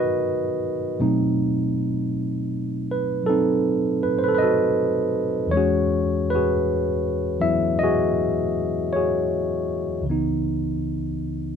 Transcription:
0.00 0.98 G#2 soft
0.00 0.99 D#3 soft
0.00 0.98 F#3 soft
0.00 1.00 B3 soft
0.00 0.97 D#4 soft
0.00 1.01 F#4 soft
0.00 1.01 G#4 soft
0.00 1.01 A#4 medium
0.00 1.01 B4 medium
0.00 0.80 D#5 medium
1.00 5.52 B2 soft
1.00 3.22 F#3 soft
1.00 5.52 A3 soft
1.00 3.28 C4 soft
1.00 3.28 D#4 soft
2.91 3.26 B4 medium
3.23 5.51 F#3 soft
3.23 4.00 A4 medium
3.23 4.02 B4 soft
3.29 5.50 C4 soft
3.29 5.50 D#4 soft
4.03 4.16 B4 medium
4.19 4.23 C5 soft
4.24 4.28 B4 medium
4.29 4.34 A4 medium
4.35 4.40 B4 medium
4.35 5.30 D#5 medium
4.42 5.50 F#4 soft
4.42 5.49 A4 soft
5.47 10.01 E2 soft
5.47 7.38 E3 soft
5.51 10.04 G#3 soft
5.51 6.31 C#5 medium
5.56 10.06 C#4 soft
5.56 6.34 F#4 medium
5.56 6.35 G#4 soft
6.30 7.38 B4 medium
6.35 7.82 F#4 soft
6.35 7.83 G#4 soft
7.39 10.04 E3 soft
7.39 10.04 F#3 soft
7.39 10.05 B3 soft
7.39 10.05 E4 soft
7.39 7.78 E5 medium
7.79 8.94 D#5 medium
7.83 8.96 F#4 medium
7.83 8.95 G#4 medium
8.93 10.03 G#4 soft
8.93 9.83 C#5 medium
8.97 10.03 F#4 soft
10.01 11.56 C#2 soft
10.01 11.56 C#3 soft
10.06 11.56 E3 soft
10.06 11.56 B3 soft
10.11 11.56 D#4 soft

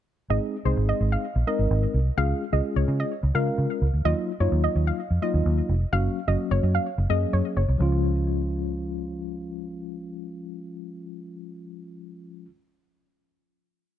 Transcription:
0.30 0.37 G#1 loud
0.30 0.55 G#3 medium
0.30 0.55 C4 medium
0.30 0.56 D#4 medium
0.30 0.56 G#4 medium
0.30 0.39 D#5 medium
0.65 0.73 C2 medium
0.65 1.25 G#3 medium
0.65 1.25 C4 medium
0.65 1.25 D#4 medium
0.65 1.25 G#4 medium
0.65 0.74 C5 medium
0.77 0.92 G#1 loud
0.89 0.98 D#5 medium
1.01 1.15 G#1 medium
1.12 1.21 F5 medium
1.36 1.43 A#1 medium
1.47 1.98 G#3 medium
1.47 1.98 C4 medium
1.47 1.98 D#4 medium
1.47 1.98 A#4 medium
1.47 1.80 D#5 medium
1.59 1.66 G#1 medium
1.71 1.85 G#1 medium
1.94 2.09 C2 medium
2.17 2.32 C#2 loud
2.17 2.43 G#3 medium
2.17 2.43 C#4 medium
2.17 2.43 F4 medium
2.17 2.43 G#4 medium
2.17 2.27 F5 medium
2.53 2.60 C#2 medium
2.53 3.12 G#3 medium
2.53 3.12 C#4 medium
2.53 3.12 F4 medium
2.53 3.12 G#4 medium
2.53 2.62 D#5 medium
2.76 2.83 C#2 medium
2.76 2.85 C#5 medium
2.88 3.02 C#3 loud
3.00 3.09 D#5 medium
3.23 3.30 C#2 medium
3.35 3.49 C#3 medium
3.35 3.86 G#3 medium
3.35 3.86 C#4 medium
3.35 3.86 F4 medium
3.35 3.86 A#4 medium
3.35 3.68 F5 medium
3.58 3.65 C#3 medium
3.82 3.89 C#2 medium
3.93 4.01 D2 medium
4.05 4.12 D#2 loud
4.05 4.30 F#3 medium
4.05 4.31 A#3 medium
4.05 4.31 D#4 medium
4.05 4.31 F4 medium
4.05 4.14 D#5 medium
4.40 4.47 F#2 medium
4.40 5.00 F#3 medium
4.40 5.00 A#3 medium
4.40 5.00 D#4 medium
4.40 5.00 F4 medium
4.40 4.49 C#5 medium
4.52 4.66 D#2 medium
4.64 4.73 D#5 medium
4.75 4.90 D#2 medium
4.87 4.96 F5 medium
5.11 5.18 F2 medium
5.22 5.73 F#3 medium
5.22 5.73 A#3 medium
5.22 5.73 D#4 medium
5.22 5.73 F4 medium
5.22 5.55 D#5 medium
5.34 5.41 D#2 medium
5.46 5.60 D#2 medium
5.69 5.84 F1 medium
5.92 6.07 F#1 loud
5.92 6.18 F#3 medium
5.92 6.18 A#3 medium
5.92 6.18 C#4 medium
5.92 6.18 F#4 medium
5.92 6.02 F5 medium
6.28 6.35 F#1 medium
6.28 6.87 F#3 medium
6.28 6.87 A#3 medium
6.28 6.87 C#4 medium
6.28 6.87 F#4 medium
6.28 6.37 D#5 medium
6.51 6.58 F#1 loud
6.51 6.60 C#5 medium
6.63 6.77 F#2 loud
6.75 6.93 F5 medium
6.98 7.05 F#1 medium
7.10 7.24 F#2 medium
7.10 7.61 F#3 medium
7.10 7.61 A#3 medium
7.10 7.61 C#4 medium
7.10 7.61 G#4 medium
7.10 7.19 D#5 medium
7.33 7.40 F#2 medium
7.33 7.42 C#5 medium
7.57 7.64 F#1 medium
7.57 7.66 C#5 medium
7.68 7.76 C2 medium
7.78 12.47 C#2 medium
7.78 12.45 F3 medium
7.78 12.46 G#3 medium
7.78 12.48 C#4 medium
7.82 12.49 F4 medium

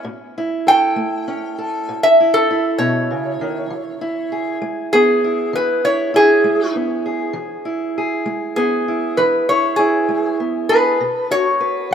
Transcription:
0.00 0.22 E4 medium
0.05 0.60 A2 medium
0.38 2.20 E4 medium
0.67 1.57 A4 medium
0.67 2.00 G5 loud
0.96 1.51 A3 medium
1.28 3.67 C#4 medium
1.58 3.67 A4 medium
1.89 2.43 A2 medium
2.03 2.33 E5 loud
2.20 2.50 E4 medium
2.34 2.78 A4 medium
2.51 4.01 E4 medium
2.78 3.09 B2 medium
2.78 4.57 C#5 medium
3.11 3.41 C#3 medium
3.41 3.70 D#3 medium
3.70 4.25 E3 medium
4.01 5.24 E4 medium
4.32 7.04 G#4 medium
4.62 5.16 G#3 medium
4.93 6.75 B3 medium
4.93 5.51 G#4 loud
5.24 5.83 E4 medium
5.53 6.08 E3 medium
5.53 5.84 B4 medium
5.85 6.13 E4 medium
5.85 6.13 C#5 medium
6.14 7.32 E4 medium
6.14 6.74 G#4 loud
6.44 6.99 G#3 medium
6.76 8.56 B3 soft
7.06 7.96 G#4 medium
7.33 7.89 E3 medium
7.65 8.87 E4 medium
7.98 10.70 G#4 medium
8.26 8.81 G#3 medium
8.56 10.40 B3 medium
8.56 9.15 G#4 medium
8.88 9.48 E4 medium
9.17 9.72 E3 medium
9.17 9.47 B4 medium
9.49 9.78 E4 medium
9.49 9.78 C#5 medium
9.76 10.97 E4 medium
9.76 10.36 G#4 loud
10.09 10.64 G#3 medium
10.40 11.94 B3 medium
10.69 11.01 G#4 medium
10.69 11.29 B4 medium
11.00 11.55 B2 medium
11.31 11.94 F#4 medium
11.31 11.90 C#5 loud
11.61 11.94 B4 medium
11.91 11.94 F#3 medium

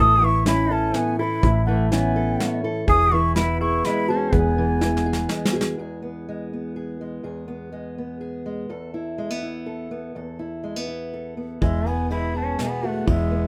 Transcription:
0.00 0.91 A1 loud
0.00 1.40 A2 medium
0.00 0.21 E3 medium
0.00 0.46 B3 medium
0.00 0.45 E4 medium
0.00 0.25 A4 medium
0.00 0.26 D#6 loud
0.22 1.68 E3 medium
0.22 0.47 E4 medium
0.22 0.47 C#6 loud
0.46 0.94 C#4 medium
0.46 1.93 E4 medium
0.46 0.72 E4 medium
0.46 0.74 B5 loud
0.46 snare medium
0.46 closed hi-hat medium
0.71 0.96 C#4 medium
0.71 1.18 A4 medium
0.71 0.96 A5 loud
0.94 1.19 B3 medium
0.94 1.41 C#4 medium
0.94 1.19 G#5 loud
0.94 snare medium
0.94 closed hi-hat medium
1.19 1.42 E4 medium
1.19 1.64 E4 medium
1.19 1.40 A4 medium
1.19 1.64 B5 medium
1.43 2.36 A1 loud
1.43 2.85 A2 medium
1.43 1.91 E4 loud
1.43 kick medium
1.43 closed hi-hat medium
1.66 3.12 E3 medium
1.66 1.89 A3 medium
1.66 1.89 F#5 medium
1.91 2.60 B3 medium
1.91 2.39 C#4 medium
1.91 3.37 E4 medium
1.91 2.59 G#5 medium
1.91 snare medium
1.91 closed hi-hat medium
2.16 2.63 A4 medium
2.40 2.86 C#4 medium
2.40 snare medium
2.40 closed hi-hat medium
2.64 2.87 E4 medium
2.64 2.85 A4 medium
2.87 3.80 E1 loud
2.87 4.34 E2 medium
2.87 3.35 G#4 loud
2.87 3.14 G#4 loud
2.87 3.14 D#6 loud
2.87 kick medium
2.87 closed hi-hat medium
3.12 4.57 E3 medium
3.12 3.36 E4 medium
3.12 3.35 C#6 loud
3.35 4.81 B3 medium
3.35 3.83 E4 medium
3.35 3.59 E4 medium
3.35 3.58 B5 loud
3.35 snare medium
3.35 closed hi-hat medium
3.61 3.83 E4 medium
3.61 4.10 G#4 medium
3.61 3.87 C#6 medium
3.85 5.30 G#3 medium
3.85 4.09 E4 medium
3.85 4.10 B5 loud
3.85 snare medium
3.85 closed hi-hat medium
4.08 4.33 C#4 medium
4.08 4.32 F#4 medium
4.08 5.06 G#4 medium
4.08 4.35 A5 medium
4.32 5.25 E1 loud
4.32 5.77 E2 medium
4.32 5.54 B3 medium
4.32 4.80 G#4 medium
4.32 5.54 G#5 medium
4.32 kick medium
4.32 closed hi-hat medium
4.58 7.24 E3 medium
4.81 6.01 B3 medium
4.81 5.28 E4 medium
4.81 snare medium
4.97 snare medium
5.06 5.54 G#4 medium
5.13 snare medium
5.29 6.27 G#3 medium
5.29 snare medium
5.45 snare medium
5.53 5.77 F#4 medium
5.53 5.76 G#4 medium
5.61 snare medium
5.78 7.23 E2 medium
5.78 6.75 G#4 soft
6.02 6.53 B3 soft
6.29 7.00 G#3 soft
6.53 7.47 B3 soft
6.76 7.21 G#4 soft
7.01 7.71 G#3 soft
7.23 8.69 E2 medium
7.23 8.20 G#4 medium
7.48 7.98 B3 medium
7.72 8.45 G#3 soft
7.98 8.94 B3 soft
8.21 8.66 G#4 soft
8.46 8.70 G#3 soft
8.69 10.15 E2 medium
8.69 9.65 A4 medium
8.94 9.42 E4 soft
9.18 9.30 G#3 soft
9.30 9.90 B3 soft
9.43 10.39 E4 soft
9.66 10.12 A4 soft
9.91 10.19 B3 soft
10.15 11.60 E2 medium
10.15 11.12 A4 soft
10.39 10.87 E4 soft
10.64 10.76 G#3 medium
10.76 11.36 B3 soft
10.88 11.58 E4 soft
11.14 11.59 A4 soft
11.37 11.58 B3 soft
11.61 12.55 E1 medium
11.61 13.06 E2 medium
11.61 11.87 G#3 medium
11.61 12.09 E4 medium
11.61 11.89 E5 medium
11.61 kick medium
11.61 ride soft
11.86 12.83 B3 medium
11.86 12.11 B3 medium
11.86 12.10 G#5 medium
11.86 ride soft
12.10 13.47 E3 soft
12.10 13.47 G#3 medium
12.10 12.33 E4 medium
12.10 12.58 G#4 medium
12.10 12.38 B5 medium
12.10 ride soft
12.35 12.60 C#4 medium
12.35 13.04 G#4 soft
12.35 12.64 A5 medium
12.58 13.07 B2 soft
12.58 12.86 B3 medium
12.58 12.87 G#5 medium
12.58 snare medium
12.58 ride soft
12.83 13.09 A3 medium
12.83 13.31 B3 medium
12.83 13.07 F#4 medium
12.83 13.08 F#5 medium
13.06 13.47 E1 medium
13.06 13.47 E2 medium
13.06 13.47 G#3 medium
13.06 13.47 E4 medium
13.06 13.47 E5 medium
13.06 kick medium
13.06 ride soft
13.31 13.47 B3 soft

